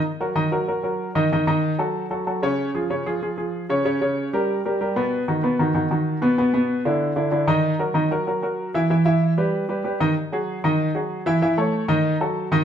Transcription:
grand piano
0.20 F#3 F#4 A#4
0.35 D#3 D#4 D#5
0.52 F#3 F#4 A#4
0.68 F#3 F#4 A#4
0.83 F#3 F#4 A#4
1.15 D#3 D#4 D#5
1.32 D#3 D#4 D#5
1.47 D#3 D#4 D#5
1.78 F#3 F#4 A4
2.10 F#3 F#4 A4
2.27 F#3 F#4 A4
2.42 C#3 C#4 C#5
2.75 F3 F4 G#4
2.90 C#3 C#4 C#5
3.06 F3 F4 G#4
3.22 F3 F4 G#4
3.37 F3 F4 G#4
3.69 C#3 C#4 C#5
3.85 C#3 C#4 C#5
4.01 C#3 C#4 C#5
4.33 G3 G4 A#4
4.65 G3 G4 A#4
4.81 G3 G4 A#4
4.96 B2 B3 B4
5.28 D#3 D#4 F#4
5.43 B2 B3 B4
5.59 D#3 D#4 F#4
5.74 D#3 D#4 F#4
5.91 D#3 D#4 F#4
6.22 B2 B3 B4
6.38 B2 B3 B4
6.53 B2 B3 B4
6.85 D3 D4 E4
7.16 D3 D4 E4
7.32 D3 D4 E4
7.47 D#3 D#4 D#5
7.79 F#3 F#4 A#4
7.94 D#3 D#4 D#5
8.11 F#3 F#4 A#4
8.27 F#3 F#4 A#4
8.42 F#3 F#4 A#4
8.74 E3 E4 E5
8.90 E3 E4 E5
9.05 E3 E4 E5
9.38 G3 G4 B4
9.69 G3 G4 B4
9.84 G3 G4 B4
10.00 D#3 D#4 D#5
10.32 F#3 F#4 G#4
10.64 D#3 D#4 D#5
10.95 F#3 F#4 G#4
11.26 E3 E4 E5
11.42 E3 E4 E5
11.57 A3 A4 C#5
11.88 D#3 D#4 D#5
12.21 F#3 F#4 A4
12.52 D#3 D#4 D#5

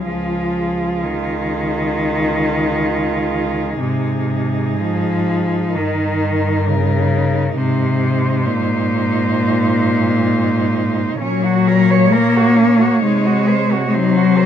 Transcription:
cello
0.05 C#2 F3 F4 G#4
1.03 D#3
3.79 G#2 C3 D#4
4.82 F3
5.75 G2 D#3 A#4
6.68 C#3
7.56 G#2 C3 D#4 C5
8.46 A#2
11.21 A#2 F#3 C#4 C#5
11.45 F#4
11.68 A#4
11.91 C#5
12.12 A#3 A#4
12.37 F#4
12.57 C#4
12.80 F#4
13.02 C3 G#3 D#4
13.26 F#4
13.49 C5
13.72 F#4
13.87 G#3
13.93 F#3 D#4 C5
14.17 F#4
14.38 C5

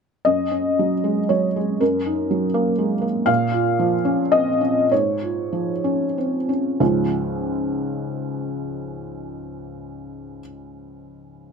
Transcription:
felt piano
0.25 F#2 D#5
0.51 C#4
0.79 F#3
1.04 G#3
1.29 F#3 C#5
1.56 G#3
1.81 F#2 A#4
2.06 D#4
2.31 F#3
2.54 A#3
2.78 G#3
3.02 A#3
3.26 A#2 F5
3.52 F4
3.79 F3
4.05 C#4
4.32 C4 D#5
4.61 C#4
4.92 G#2 C#5
5.22 F4
5.53 F3
5.84 C#4
6.18 C4
6.49 C#4
6.80 C#2 G#2 F3 G#3 C#4 F4

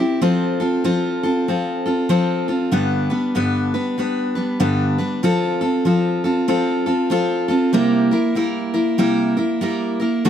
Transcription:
steel-string acoustic guitar
Already playing: G4
0.00 C4 E4
0.21 F3 C4 F4 A4
0.60 C4 F4 A4
0.84 F3 C4 F4 A4
1.23 C4 F4 A4
1.48 F3 C4 F4 A4
1.86 C4 F4 A4
2.09 F3 C4 F4 A4
2.48 C4 F4 A4
2.71 G2 D3 G3 B3 D4 B4
3.10 G3 B3 D4 B4
3.35 G2 D3 G3 B3 D4 B4
3.74 G3 B3 D4 B4
3.98 G3 B3 D4 B4
4.35 G3 B3 D4 B4
4.60 G2 D3 G3 B3 D4 B4
4.98 G3 B3 D4 B4
5.23 F3 C4 F4 A4
5.61 C4 F4 A4
5.85 F3 C4 F4 A4
6.24 C4 F4 A4
6.48 F3 C4 F4 A4
6.86 C4 F4 A4
7.10 F3 C4 F4 A4
7.48 C4 F4 A4
7.73 C3 G3 A#3 E4 A#4
8.11 A#3 E4 A#4
8.35 G3 A#3 E4 A#4
8.74 A#3 E4 A#4
8.98 C3 G3 A#3 E4 A#4
9.37 A#3 E4 A#4
9.61 G3 A#3 E4 A#4
10.00 A#3 E4 A#4
10.25 D3 A3 D4 F#4 A4

